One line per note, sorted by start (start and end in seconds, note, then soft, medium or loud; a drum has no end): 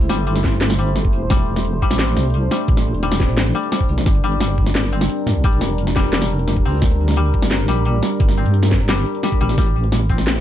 0.00 4.02 A3 medium
0.00 1.27 E4 medium
0.00 4.02 C5 medium
0.00 tambourine medium
0.09 1.14 G1 medium
0.09 0.26 G3 loud
0.09 snare medium
0.18 closed hi-hat soft
0.27 0.77 G3 medium
0.27 closed hi-hat medium
0.36 snare medium
0.44 kick medium
0.44 snare medium
0.61 snare loud
0.61 closed hi-hat medium
0.70 snare medium
0.70 closed hi-hat soft
0.70 tambourine medium
0.78 1.29 G3 medium
0.78 tambourine medium
0.87 closed hi-hat soft
0.96 snare medium
0.96 closed hi-hat medium
1.05 kick medium
1.13 1.81 E1 medium
1.13 tambourine medium
1.30 1.81 G3 loud
1.30 9.54 D4 medium
1.30 kick loud
1.30 snare medium
1.30 closed hi-hat medium
1.39 tambourine medium
1.56 snare medium
1.56 closed hi-hat soft
1.65 closed hi-hat medium
1.82 1.99 G3 loud
1.82 kick medium
1.91 2.15 A1 medium
1.91 snare medium
1.99 2.50 G3 medium
1.99 snare loud
1.99 closed hi-hat medium
2.08 closed hi-hat soft
2.16 2.50 C2 medium
2.16 snare medium
2.16 tambourine medium
2.25 closed hi-hat soft
2.30 closed hi-hat soft
2.34 closed hi-hat medium
2.51 3.02 G3 medium
2.51 snare medium
2.51 tambourine medium
2.68 2.93 A1 loud
2.68 kick loud
2.68 closed hi-hat medium
2.77 snare medium
2.77 tambourine medium
2.94 3.27 E1 medium
2.94 closed hi-hat soft
3.03 3.54 G3 loud
3.03 closed hi-hat medium
3.12 snare medium
3.20 kick medium
3.20 snare medium
3.28 3.53 A1 medium
3.37 snare loud
3.37 snare medium
3.37 closed hi-hat medium
3.46 closed hi-hat soft
3.46 tambourine medium
3.55 3.71 G3 loud
3.55 tambourine medium
3.63 closed hi-hat soft
3.72 4.11 G3 medium
3.72 snare medium
3.72 closed hi-hat medium
3.81 kick medium
3.89 3.99 C2 medium
3.89 tambourine medium
3.97 4.05 A1 medium
3.97 snare medium
4.06 5.09 G1 loud
4.06 9.54 G3 medium
4.06 9.54 A#4 medium
4.06 kick loud
4.06 snare medium
4.06 closed hi-hat medium
4.15 tambourine medium
4.24 4.40 G3 loud
4.32 closed hi-hat soft
4.40 5.43 G3 medium
4.40 snare medium
4.40 closed hi-hat medium
4.58 kick medium
4.66 snare medium
4.75 snare loud
4.75 closed hi-hat medium
4.84 closed hi-hat soft
4.92 6.65 C4 medium
4.92 tambourine medium
5.01 snare medium
5.01 closed hi-hat soft
5.10 closed hi-hat medium
5.26 5.37 G2 loud
5.26 snare medium
5.26 tambourine medium
5.35 5.60 A#1 medium
5.44 5.95 G3 loud
5.44 kick loud
5.44 closed hi-hat medium
5.52 tambourine medium
5.61 6.66 F1 medium
5.61 snare medium
5.70 closed hi-hat soft
5.78 closed hi-hat medium
5.87 snare medium
5.96 6.12 G3 loud
5.96 kick medium
5.96 snare medium
6.13 7.16 G3 medium
6.13 snare loud
6.13 closed hi-hat medium
6.22 snare medium
6.22 closed hi-hat soft
6.22 tambourine medium
6.31 tambourine medium
6.39 closed hi-hat soft
6.48 snare medium
6.48 closed hi-hat medium
6.56 kick medium
6.65 7.33 D2 medium
6.65 8.37 C4 medium
6.65 tambourine soft
6.67 tambourine soft
6.70 tambourine soft
6.72 tambourine soft
6.75 tambourine soft
6.77 tambourine soft
6.79 kick loud
6.79 snare medium
6.79 closed hi-hat medium
6.79 tambourine medium
6.91 tambourine medium
7.08 snare soft
7.08 closed hi-hat soft
7.11 snare soft
7.14 7.67 G3 loud
7.14 snare soft
7.14 closed hi-hat medium
7.34 kick medium
7.42 7.67 G1 medium
7.42 snare medium
7.51 snare loud
7.51 closed hi-hat medium
7.60 closed hi-hat soft
7.68 8.02 A#1 medium
7.68 7.85 G3 loud
7.68 snare medium
7.68 tambourine medium
7.77 closed hi-hat soft
7.85 8.88 G3 medium
7.85 closed hi-hat medium
8.03 snare medium
8.03 tambourine medium
8.20 8.45 G1 loud
8.20 kick loud
8.20 closed hi-hat medium
8.29 snare medium
8.29 tambourine medium
8.38 10.09 C4 medium
8.46 8.79 G2 medium
8.46 closed hi-hat soft
8.54 closed hi-hat medium
8.63 snare medium
8.71 kick medium
8.71 snare medium
8.80 9.05 G1 medium
8.89 9.22 G3 loud
8.89 snare loud
8.89 snare soft
8.89 closed hi-hat medium
8.97 closed hi-hat soft
8.97 tambourine medium
9.06 tambourine medium
9.15 closed hi-hat soft
9.23 9.40 G3 loud
9.23 snare medium
9.23 closed hi-hat medium
9.32 kick medium
9.40 9.51 A#1 medium
9.40 9.57 G3 loud
9.40 tambourine medium
9.49 9.57 G1 medium
9.49 snare soft
9.57 10.40 A1 loud
9.57 10.40 G3 medium
9.57 10.40 A3 medium
9.57 10.40 E4 medium
9.57 10.40 C5 medium
9.57 kick loud
9.57 snare medium
9.57 closed hi-hat medium
9.67 tambourine medium
9.84 closed hi-hat soft
9.92 snare medium
9.92 closed hi-hat medium
10.10 10.40 C4 medium
10.10 kick medium
10.18 snare medium
10.27 snare loud
10.27 closed hi-hat medium
10.36 closed hi-hat soft